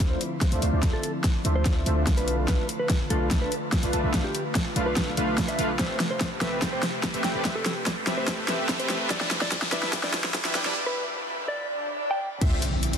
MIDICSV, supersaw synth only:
0, 0, Header, 1, 2, 480
1, 0, Start_track
1, 0, Key_signature, 0, "minor"
1, 0, Tempo, 413793
1, 962, Time_signature, 4, 2, 24, 8
1, 15056, End_track
2, 0, Start_track
2, 0, Title_t, "Supersaw synth"
2, 0, Program_c, 0, 81
2, 0, Note_on_c, 0, 62, 68
2, 0, Note_on_c, 0, 77, 77
2, 1, Note_on_c, 0, 57, 74
2, 1, Note_on_c, 0, 65, 66
2, 1, Note_on_c, 0, 72, 68
2, 207, Note_off_c, 0, 57, 0
2, 207, Note_off_c, 0, 62, 0
2, 207, Note_off_c, 0, 65, 0
2, 207, Note_off_c, 0, 72, 0
2, 207, Note_off_c, 0, 77, 0
2, 601, Note_on_c, 0, 57, 79
2, 601, Note_on_c, 0, 62, 72
2, 601, Note_on_c, 0, 65, 75
2, 601, Note_on_c, 0, 72, 73
2, 601, Note_on_c, 0, 76, 85
2, 692, Note_off_c, 0, 57, 0
2, 692, Note_off_c, 0, 62, 0
2, 692, Note_off_c, 0, 65, 0
2, 692, Note_off_c, 0, 72, 0
2, 692, Note_off_c, 0, 76, 0
2, 719, Note_on_c, 0, 57, 90
2, 719, Note_on_c, 0, 62, 79
2, 719, Note_on_c, 0, 65, 81
2, 719, Note_on_c, 0, 72, 82
2, 719, Note_on_c, 0, 77, 100
2, 812, Note_off_c, 0, 57, 0
2, 812, Note_off_c, 0, 62, 0
2, 812, Note_off_c, 0, 65, 0
2, 812, Note_off_c, 0, 72, 0
2, 812, Note_off_c, 0, 77, 0
2, 841, Note_on_c, 0, 72, 74
2, 841, Note_on_c, 0, 74, 91
2, 842, Note_on_c, 0, 57, 85
2, 842, Note_on_c, 0, 62, 77
2, 842, Note_on_c, 0, 65, 80
2, 932, Note_off_c, 0, 57, 0
2, 932, Note_off_c, 0, 62, 0
2, 932, Note_off_c, 0, 65, 0
2, 932, Note_off_c, 0, 72, 0
2, 932, Note_off_c, 0, 74, 0
2, 961, Note_on_c, 0, 57, 98
2, 961, Note_on_c, 0, 62, 89
2, 961, Note_on_c, 0, 65, 87
2, 961, Note_on_c, 0, 72, 90
2, 962, Note_on_c, 0, 76, 108
2, 1091, Note_off_c, 0, 57, 0
2, 1091, Note_off_c, 0, 62, 0
2, 1091, Note_off_c, 0, 65, 0
2, 1091, Note_off_c, 0, 72, 0
2, 1091, Note_off_c, 0, 76, 0
2, 1680, Note_on_c, 0, 62, 69
2, 1681, Note_on_c, 0, 57, 70
2, 1681, Note_on_c, 0, 65, 68
2, 1681, Note_on_c, 0, 72, 66
2, 1681, Note_on_c, 0, 76, 79
2, 1892, Note_off_c, 0, 57, 0
2, 1892, Note_off_c, 0, 62, 0
2, 1893, Note_off_c, 0, 65, 0
2, 1893, Note_off_c, 0, 72, 0
2, 1893, Note_off_c, 0, 76, 0
2, 1919, Note_on_c, 0, 72, 85
2, 1919, Note_on_c, 0, 76, 97
2, 1920, Note_on_c, 0, 57, 92
2, 1920, Note_on_c, 0, 65, 82
2, 1921, Note_on_c, 0, 62, 82
2, 2050, Note_off_c, 0, 72, 0
2, 2050, Note_off_c, 0, 76, 0
2, 2051, Note_off_c, 0, 57, 0
2, 2051, Note_off_c, 0, 62, 0
2, 2051, Note_off_c, 0, 65, 0
2, 2161, Note_on_c, 0, 57, 76
2, 2161, Note_on_c, 0, 62, 71
2, 2161, Note_on_c, 0, 65, 72
2, 2161, Note_on_c, 0, 72, 68
2, 2161, Note_on_c, 0, 76, 84
2, 2365, Note_off_c, 0, 57, 0
2, 2365, Note_off_c, 0, 62, 0
2, 2365, Note_off_c, 0, 65, 0
2, 2365, Note_off_c, 0, 72, 0
2, 2365, Note_off_c, 0, 76, 0
2, 2400, Note_on_c, 0, 62, 68
2, 2400, Note_on_c, 0, 65, 69
2, 2400, Note_on_c, 0, 71, 68
2, 2401, Note_on_c, 0, 57, 74
2, 2401, Note_on_c, 0, 77, 80
2, 2852, Note_off_c, 0, 62, 0
2, 2852, Note_off_c, 0, 65, 0
2, 2852, Note_off_c, 0, 71, 0
2, 2853, Note_off_c, 0, 57, 0
2, 2853, Note_off_c, 0, 77, 0
2, 2881, Note_on_c, 0, 57, 74
2, 2881, Note_on_c, 0, 62, 70
2, 2881, Note_on_c, 0, 65, 73
2, 2881, Note_on_c, 0, 71, 72
2, 2881, Note_on_c, 0, 77, 84
2, 3011, Note_off_c, 0, 57, 0
2, 3011, Note_off_c, 0, 62, 0
2, 3011, Note_off_c, 0, 65, 0
2, 3011, Note_off_c, 0, 71, 0
2, 3011, Note_off_c, 0, 77, 0
2, 3599, Note_on_c, 0, 57, 78
2, 3599, Note_on_c, 0, 71, 72
2, 3600, Note_on_c, 0, 62, 75
2, 3600, Note_on_c, 0, 65, 73
2, 3600, Note_on_c, 0, 77, 89
2, 3812, Note_off_c, 0, 57, 0
2, 3812, Note_off_c, 0, 62, 0
2, 3812, Note_off_c, 0, 65, 0
2, 3812, Note_off_c, 0, 71, 0
2, 3812, Note_off_c, 0, 77, 0
2, 3840, Note_on_c, 0, 57, 73
2, 3840, Note_on_c, 0, 62, 71
2, 3840, Note_on_c, 0, 65, 68
2, 3840, Note_on_c, 0, 71, 67
2, 3840, Note_on_c, 0, 81, 83
2, 4047, Note_off_c, 0, 57, 0
2, 4047, Note_off_c, 0, 62, 0
2, 4047, Note_off_c, 0, 65, 0
2, 4047, Note_off_c, 0, 71, 0
2, 4047, Note_off_c, 0, 81, 0
2, 4441, Note_on_c, 0, 71, 77
2, 4441, Note_on_c, 0, 77, 90
2, 4442, Note_on_c, 0, 57, 78
2, 4442, Note_on_c, 0, 62, 76
2, 4442, Note_on_c, 0, 65, 75
2, 4532, Note_off_c, 0, 57, 0
2, 4532, Note_off_c, 0, 62, 0
2, 4532, Note_off_c, 0, 65, 0
2, 4532, Note_off_c, 0, 71, 0
2, 4532, Note_off_c, 0, 77, 0
2, 4559, Note_on_c, 0, 62, 80
2, 4559, Note_on_c, 0, 65, 81
2, 4559, Note_on_c, 0, 81, 100
2, 4560, Note_on_c, 0, 57, 92
2, 4560, Note_on_c, 0, 71, 80
2, 4652, Note_off_c, 0, 81, 0
2, 4653, Note_off_c, 0, 57, 0
2, 4653, Note_off_c, 0, 62, 0
2, 4653, Note_off_c, 0, 65, 0
2, 4653, Note_off_c, 0, 71, 0
2, 4680, Note_on_c, 0, 57, 84
2, 4680, Note_on_c, 0, 62, 78
2, 4680, Note_on_c, 0, 65, 77
2, 4680, Note_on_c, 0, 71, 79
2, 4681, Note_on_c, 0, 76, 91
2, 4771, Note_off_c, 0, 57, 0
2, 4771, Note_off_c, 0, 62, 0
2, 4771, Note_off_c, 0, 65, 0
2, 4772, Note_off_c, 0, 71, 0
2, 4772, Note_off_c, 0, 76, 0
2, 4799, Note_on_c, 0, 65, 89
2, 4799, Note_on_c, 0, 71, 85
2, 4800, Note_on_c, 0, 57, 97
2, 4800, Note_on_c, 0, 62, 87
2, 4800, Note_on_c, 0, 77, 106
2, 4930, Note_off_c, 0, 57, 0
2, 4930, Note_off_c, 0, 62, 0
2, 4930, Note_off_c, 0, 65, 0
2, 4930, Note_off_c, 0, 71, 0
2, 4930, Note_off_c, 0, 77, 0
2, 5520, Note_on_c, 0, 57, 71
2, 5520, Note_on_c, 0, 62, 65
2, 5520, Note_on_c, 0, 65, 66
2, 5520, Note_on_c, 0, 71, 68
2, 5520, Note_on_c, 0, 77, 81
2, 5732, Note_off_c, 0, 57, 0
2, 5732, Note_off_c, 0, 62, 0
2, 5732, Note_off_c, 0, 65, 0
2, 5732, Note_off_c, 0, 71, 0
2, 5732, Note_off_c, 0, 77, 0
2, 5759, Note_on_c, 0, 57, 88
2, 5759, Note_on_c, 0, 62, 86
2, 5759, Note_on_c, 0, 65, 80
2, 5759, Note_on_c, 0, 71, 80
2, 5759, Note_on_c, 0, 77, 96
2, 5890, Note_off_c, 0, 57, 0
2, 5890, Note_off_c, 0, 62, 0
2, 5890, Note_off_c, 0, 65, 0
2, 5890, Note_off_c, 0, 71, 0
2, 5890, Note_off_c, 0, 77, 0
2, 5999, Note_on_c, 0, 62, 72
2, 5999, Note_on_c, 0, 77, 89
2, 6000, Note_on_c, 0, 57, 80
2, 6000, Note_on_c, 0, 65, 75
2, 6000, Note_on_c, 0, 71, 72
2, 6452, Note_off_c, 0, 57, 0
2, 6452, Note_off_c, 0, 62, 0
2, 6452, Note_off_c, 0, 65, 0
2, 6452, Note_off_c, 0, 71, 0
2, 6452, Note_off_c, 0, 77, 0
2, 6479, Note_on_c, 0, 57, 100
2, 6479, Note_on_c, 0, 62, 91
2, 6479, Note_on_c, 0, 77, 110
2, 6480, Note_on_c, 0, 65, 93
2, 6480, Note_on_c, 0, 71, 95
2, 6610, Note_off_c, 0, 57, 0
2, 6610, Note_off_c, 0, 62, 0
2, 6610, Note_off_c, 0, 65, 0
2, 6610, Note_off_c, 0, 71, 0
2, 6610, Note_off_c, 0, 77, 0
2, 6719, Note_on_c, 0, 67, 71
2, 6720, Note_on_c, 0, 57, 80
2, 6720, Note_on_c, 0, 60, 72
2, 6720, Note_on_c, 0, 71, 68
2, 6720, Note_on_c, 0, 76, 85
2, 6850, Note_off_c, 0, 57, 0
2, 6850, Note_off_c, 0, 60, 0
2, 6850, Note_off_c, 0, 67, 0
2, 6850, Note_off_c, 0, 71, 0
2, 6850, Note_off_c, 0, 76, 0
2, 7439, Note_on_c, 0, 57, 83
2, 7439, Note_on_c, 0, 60, 75
2, 7439, Note_on_c, 0, 67, 73
2, 7439, Note_on_c, 0, 71, 76
2, 7439, Note_on_c, 0, 76, 91
2, 7651, Note_off_c, 0, 57, 0
2, 7651, Note_off_c, 0, 71, 0
2, 7652, Note_off_c, 0, 60, 0
2, 7652, Note_off_c, 0, 67, 0
2, 7652, Note_off_c, 0, 76, 0
2, 7680, Note_on_c, 0, 71, 66
2, 7680, Note_on_c, 0, 79, 81
2, 7681, Note_on_c, 0, 57, 75
2, 7681, Note_on_c, 0, 60, 69
2, 7681, Note_on_c, 0, 67, 69
2, 7887, Note_off_c, 0, 57, 0
2, 7887, Note_off_c, 0, 60, 0
2, 7887, Note_off_c, 0, 67, 0
2, 7887, Note_off_c, 0, 71, 0
2, 7887, Note_off_c, 0, 79, 0
2, 8282, Note_on_c, 0, 60, 76
2, 8282, Note_on_c, 0, 71, 73
2, 8283, Note_on_c, 0, 57, 81
2, 8283, Note_on_c, 0, 67, 76
2, 8283, Note_on_c, 0, 76, 86
2, 8372, Note_off_c, 0, 60, 0
2, 8372, Note_off_c, 0, 71, 0
2, 8373, Note_off_c, 0, 57, 0
2, 8373, Note_off_c, 0, 67, 0
2, 8373, Note_off_c, 0, 76, 0
2, 8401, Note_on_c, 0, 57, 94
2, 8401, Note_on_c, 0, 67, 83
2, 8402, Note_on_c, 0, 60, 81
2, 8402, Note_on_c, 0, 71, 83
2, 8402, Note_on_c, 0, 79, 99
2, 8493, Note_off_c, 0, 57, 0
2, 8493, Note_off_c, 0, 67, 0
2, 8494, Note_off_c, 0, 60, 0
2, 8494, Note_off_c, 0, 71, 0
2, 8494, Note_off_c, 0, 79, 0
2, 8522, Note_on_c, 0, 57, 86
2, 8522, Note_on_c, 0, 60, 78
2, 8522, Note_on_c, 0, 67, 79
2, 8522, Note_on_c, 0, 71, 80
2, 8522, Note_on_c, 0, 74, 92
2, 8612, Note_off_c, 0, 57, 0
2, 8612, Note_off_c, 0, 74, 0
2, 8613, Note_off_c, 0, 60, 0
2, 8613, Note_off_c, 0, 67, 0
2, 8613, Note_off_c, 0, 71, 0
2, 8642, Note_on_c, 0, 57, 95
2, 8642, Note_on_c, 0, 60, 87
2, 8642, Note_on_c, 0, 67, 88
2, 8642, Note_on_c, 0, 71, 86
2, 8642, Note_on_c, 0, 76, 107
2, 8771, Note_off_c, 0, 60, 0
2, 8771, Note_off_c, 0, 67, 0
2, 8771, Note_off_c, 0, 76, 0
2, 8772, Note_off_c, 0, 57, 0
2, 8772, Note_off_c, 0, 71, 0
2, 9361, Note_on_c, 0, 57, 77
2, 9361, Note_on_c, 0, 60, 66
2, 9361, Note_on_c, 0, 71, 70
2, 9361, Note_on_c, 0, 76, 83
2, 9362, Note_on_c, 0, 67, 67
2, 9573, Note_off_c, 0, 57, 0
2, 9573, Note_off_c, 0, 60, 0
2, 9573, Note_off_c, 0, 67, 0
2, 9573, Note_off_c, 0, 71, 0
2, 9573, Note_off_c, 0, 76, 0
2, 9600, Note_on_c, 0, 76, 97
2, 9601, Note_on_c, 0, 57, 89
2, 9601, Note_on_c, 0, 60, 82
2, 9601, Note_on_c, 0, 67, 84
2, 9601, Note_on_c, 0, 71, 84
2, 9731, Note_off_c, 0, 57, 0
2, 9731, Note_off_c, 0, 60, 0
2, 9731, Note_off_c, 0, 67, 0
2, 9731, Note_off_c, 0, 71, 0
2, 9731, Note_off_c, 0, 76, 0
2, 9841, Note_on_c, 0, 76, 85
2, 9842, Note_on_c, 0, 57, 75
2, 9842, Note_on_c, 0, 60, 69
2, 9842, Note_on_c, 0, 67, 70
2, 9842, Note_on_c, 0, 71, 71
2, 10046, Note_off_c, 0, 57, 0
2, 10046, Note_off_c, 0, 60, 0
2, 10046, Note_off_c, 0, 67, 0
2, 10046, Note_off_c, 0, 71, 0
2, 10046, Note_off_c, 0, 76, 0
2, 10080, Note_on_c, 0, 76, 80
2, 10081, Note_on_c, 0, 57, 77
2, 10081, Note_on_c, 0, 60, 67
2, 10081, Note_on_c, 0, 67, 71
2, 10081, Note_on_c, 0, 71, 68
2, 10532, Note_off_c, 0, 67, 0
2, 10532, Note_off_c, 0, 76, 0
2, 10533, Note_off_c, 0, 57, 0
2, 10533, Note_off_c, 0, 60, 0
2, 10533, Note_off_c, 0, 71, 0
2, 10560, Note_on_c, 0, 55, 77
2, 10560, Note_on_c, 0, 62, 70
2, 10560, Note_on_c, 0, 64, 69
2, 10560, Note_on_c, 0, 76, 90
2, 10561, Note_on_c, 0, 71, 71
2, 10690, Note_off_c, 0, 64, 0
2, 10691, Note_off_c, 0, 55, 0
2, 10691, Note_off_c, 0, 62, 0
2, 10691, Note_off_c, 0, 71, 0
2, 10691, Note_off_c, 0, 76, 0
2, 11280, Note_on_c, 0, 71, 77
2, 11281, Note_on_c, 0, 55, 82
2, 11281, Note_on_c, 0, 62, 76
2, 11281, Note_on_c, 0, 64, 73
2, 11281, Note_on_c, 0, 76, 92
2, 11492, Note_off_c, 0, 55, 0
2, 11492, Note_off_c, 0, 62, 0
2, 11492, Note_off_c, 0, 64, 0
2, 11492, Note_off_c, 0, 71, 0
2, 11492, Note_off_c, 0, 76, 0
2, 11521, Note_on_c, 0, 55, 77
2, 11521, Note_on_c, 0, 62, 71
2, 11521, Note_on_c, 0, 64, 69
2, 11521, Note_on_c, 0, 71, 69
2, 11521, Note_on_c, 0, 79, 87
2, 11727, Note_off_c, 0, 64, 0
2, 11727, Note_off_c, 0, 71, 0
2, 11727, Note_off_c, 0, 79, 0
2, 11728, Note_off_c, 0, 55, 0
2, 11728, Note_off_c, 0, 62, 0
2, 12121, Note_on_c, 0, 62, 77
2, 12122, Note_on_c, 0, 55, 84
2, 12122, Note_on_c, 0, 64, 72
2, 12122, Note_on_c, 0, 71, 79
2, 12122, Note_on_c, 0, 76, 92
2, 12212, Note_off_c, 0, 55, 0
2, 12212, Note_off_c, 0, 62, 0
2, 12212, Note_off_c, 0, 64, 0
2, 12212, Note_off_c, 0, 71, 0
2, 12212, Note_off_c, 0, 76, 0
2, 12241, Note_on_c, 0, 55, 91
2, 12241, Note_on_c, 0, 62, 85
2, 12242, Note_on_c, 0, 64, 84
2, 12242, Note_on_c, 0, 71, 89
2, 12242, Note_on_c, 0, 79, 106
2, 12333, Note_off_c, 0, 55, 0
2, 12333, Note_off_c, 0, 62, 0
2, 12334, Note_off_c, 0, 64, 0
2, 12334, Note_off_c, 0, 71, 0
2, 12334, Note_off_c, 0, 79, 0
2, 12363, Note_on_c, 0, 55, 86
2, 12363, Note_on_c, 0, 62, 79
2, 12363, Note_on_c, 0, 64, 80
2, 12363, Note_on_c, 0, 71, 78
2, 12363, Note_on_c, 0, 74, 99
2, 12453, Note_off_c, 0, 55, 0
2, 12453, Note_off_c, 0, 62, 0
2, 12453, Note_off_c, 0, 64, 0
2, 12453, Note_off_c, 0, 71, 0
2, 12453, Note_off_c, 0, 74, 0
2, 14400, Note_on_c, 0, 62, 73
2, 14401, Note_on_c, 0, 57, 81
2, 14401, Note_on_c, 0, 65, 73
2, 14401, Note_on_c, 0, 72, 71
2, 14401, Note_on_c, 0, 76, 88
2, 14531, Note_off_c, 0, 57, 0
2, 14531, Note_off_c, 0, 62, 0
2, 14531, Note_off_c, 0, 65, 0
2, 14531, Note_off_c, 0, 72, 0
2, 14531, Note_off_c, 0, 76, 0
2, 15056, End_track
0, 0, End_of_file